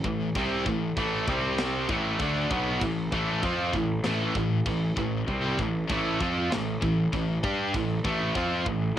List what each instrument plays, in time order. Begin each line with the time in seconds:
0.04 picked electric bass A1, distorted electric guitar A2 E3, kick
0.35 picked electric bass C2, distorted electric guitar C3 G3 C4, kick, crash
0.66 picked electric bass A1, distorted electric guitar A2 E3, kick
0.96 picked electric bass A1, distorted electric guitar A2 E3 A3, kick, crash
1.28 picked electric bass C2, distorted electric guitar C3 G3 C4, kick
1.58 snare, crash
1.89 picked electric bass A1, distorted electric guitar A2 E3 A3, kick
2.19 picked electric bass D2, distorted electric guitar D3 A3 D4, kick, crash
2.50 picked electric bass B1, distorted electric guitar B2 F#3 B3, kick
2.81 picked electric bass A1, distorted electric guitar A2 E3, kick, crash
3.11 picked electric bass A1, distorted electric guitar A2 E3 A3, kick
3.42 picked electric bass F2, distorted electric guitar F3 C4 F4, kick, crash
3.73 picked electric bass A1, distorted electric guitar A2 E3, kick
4.04 picked electric bass A1, distorted electric guitar A2 E3 A3, snare, crash
4.35 picked electric bass A1, distorted electric guitar A2 E3, kick
4.66 picked electric bass A1, distorted electric guitar A2 E3, kick, crash
4.97 picked electric bass A1, distorted electric guitar A2 E3, kick
5.28 picked electric bass C2, distorted electric guitar C3 G3 C4, kick, crash
5.59 picked electric bass A1, distorted electric guitar A2 E3, kick
5.90 picked electric bass A1, distorted electric guitar A2 E3 A3, kick, crash
6.20 picked electric bass F2, distorted electric guitar F3 C4 F4, kick
6.51 picked electric bass A1, distorted electric guitar A2 E3, snare, crash
6.82 picked electric bass A1, distorted electric guitar A2 E3, kick
7.13 picked electric bass A1, distorted electric guitar A2 E3, kick, crash
7.43 picked electric bass G2, distorted electric guitar G3 D4 G4, kick
7.74 picked electric bass A1, distorted electric guitar A2 E3, kick, crash
8.04 picked electric bass A1, distorted electric guitar A2 E3 A3, kick
8.35 picked electric bass F2, distorted electric guitar F3 C4 F4, kick, crash
8.66 picked electric bass A1, distorted electric guitar A2 E3, kick
8.96 distorted electric guitar A2